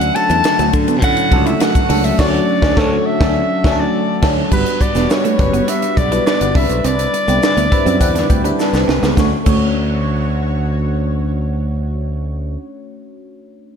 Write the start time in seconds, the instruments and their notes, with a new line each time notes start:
Already playing: analog synth pad D3 A3 F#4, fm electric piano F#3 A3 C#4 D4 A4, soprano saxophone F#5
0.01 ride, shaker
0.15 fm electric piano F#3 A3 C#4 D4 A4, soprano saxophone A5, muted clean electric guitar stroke, ride
0.30 fingered electric bass E2, clean electric guitar B3, ride, shaker
0.44 snare, ride, shaker
0.59 fingered electric bass D2, fm electric piano F#3 A3 C#4 D4 A4, clean electric guitar A3, ride, shaker
0.73 fingered electric bass D3, muted clean electric guitar stroke, kick, ride, shaker
0.88 clean electric guitar B3, ride, shaker
1.02 fingered electric bass A2, fm electric piano F#3 A3 C#4 D4 A4, clean electric guitar C#4, soprano saxophone F#5, kick, ride, shaker
1.17 muted clean electric guitar stroke, ride, shaker
1.31 fingered electric bass C#2, fm electric piano F#3 A3 C#4 D4 A4, kick, ride
1.46 clean electric guitar E4, soprano saxophone E5, ride, shaker
1.60 soprano saxophone F#5, snare, ride, shaker
1.75 kick, ride, shaker
1.89 fingered electric bass C#2, fm electric piano F#3 A3 C#4 D4 A4, clean electric guitar D4, open hi-hat, ride
2.04 soprano saxophone E5, ride, shaker
2.18 fingered electric bass D2, fm electric piano F#3 A3 C#4 D4 F#4, soprano saxophone D5, kick, snare, crash
2.62 fingered electric bass D2, fm electric piano F#3 A3 C#4 D4, kick, snare
2.76 fingered electric bass D2, fm electric piano F#3 A3 C#4 D4 A4, soprano saxophone C#5, kick, snare
3.06 soprano saxophone E5
3.20 fingered electric bass D2, fm electric piano F#3 A3 C#4 D4 A4, kick, snare
3.64 fingered electric bass D2, fm electric piano F#3 A3 C#4 D4, kick, snare
3.71 fm electric piano A4
3.80 soprano saxophone D5
4.22 fingered electric bass D2, fm electric piano F#3 A3 C#4 D4 A4, kick, snare, crash
4.51 fingered electric bass G1, fm electric piano G3 B3 D4 F#4 B4, clean electric guitar G3, analog synth pad G3 F#4 B4, soprano saxophone B4, kick, crash, shaker
4.66 closed hi-hat, shaker
4.81 soprano saxophone D5, muted clean electric guitar stroke, kick, closed hi-hat, shaker
4.95 fingered electric bass E1, fm electric piano G3 B3 D4 F#4 B4, clean electric guitar B3, snare, closed hi-hat, shaker
5.10 soprano saxophone C#5, snare, shaker
5.24 clean electric guitar A3, closed hi-hat, shaker
5.38 fingered electric bass F#1, fm electric piano G3 B3 D4 F#4 B4, muted clean electric guitar stroke, kick, closed hi-hat
5.53 clean electric guitar B3, closed hi-hat, shaker
5.67 fm electric piano G3 B3 D4 F#4 B4, clean electric guitar D4, soprano saxophone E5, closed hi-hat, shaker
5.82 muted clean electric guitar stroke, closed hi-hat, shaker
5.97 fingered electric bass B1, soprano saxophone D5, kick, closed hi-hat, shaker
6.11 fm electric piano G3 B3 D4 F#4 B4, clean electric guitar E4, closed hi-hat, shaker
6.26 soprano saxophone D5, snare, shaker
6.40 fingered electric bass G1, fm electric piano G3 B3 D4 F#4 B4, closed hi-hat, shaker
6.55 fingered electric bass C2, analog synth pad D3 E4, fm electric piano G3 C4 D4 E4 B4, clean electric guitar D4, soprano saxophone E5, kick, open hi-hat
6.69 fingered electric bass B1, closed hi-hat, shaker
6.84 fingered electric bass C2, clean electric guitar C4, soprano saxophone D5, closed hi-hat, shaker
6.99 closed hi-hat, shaker
7.14 muted clean electric guitar stroke, closed hi-hat, shaker
7.27 fingered electric bass C2, fm electric piano G3 C4 D4 E4 G4, clean electric guitar B3, closed hi-hat, shaker
7.43 snare, shaker
7.57 fingered electric bass D2, clean electric guitar B3, closed hi-hat, shaker
7.71 fm electric piano G3 C4 D4 E4 B4 E5, muted clean electric guitar stroke, kick, closed hi-hat
7.86 fingered electric bass F#2, clean electric guitar C4, fm electric piano D5, closed hi-hat, shaker
8.00 fingered electric bass E2, fm electric piano G3 C4 D4 E4 B4 F#5, kick, closed hi-hat, shaker
8.15 clean electric guitar D4, snare, closed hi-hat, shaker
8.30 fingered electric bass D2, fm electric piano G5, muted clean electric guitar stroke, kick, closed hi-hat, shaker
8.44 fm electric piano G3 C4 D4 E4 B4, clean electric guitar D4, closed hi-hat, shaker
8.59 fm electric piano A5, muted clean electric guitar stroke, snare, shaker
8.73 fingered electric bass C2, fm electric piano G3 C4 D4 E4 B4 B5, snare, shaker
8.88 fingered electric bass C2, clean electric guitar C4, snare
9.03 fingered electric bass C#2, clean electric guitar B3, snare, shaker
9.15 fingered electric bass D2, analog synth pad D3 F#4 C#5, fm electric piano A3 C#4 D4 F#4, clean electric guitar A3, kick, snare, shaker
9.20 fm electric piano C#5
9.44 fingered electric bass D2, fm electric piano A3 C#4 D4 F#4, clean electric guitar A3, kick, crash, shaker
9.49 fm electric piano C#5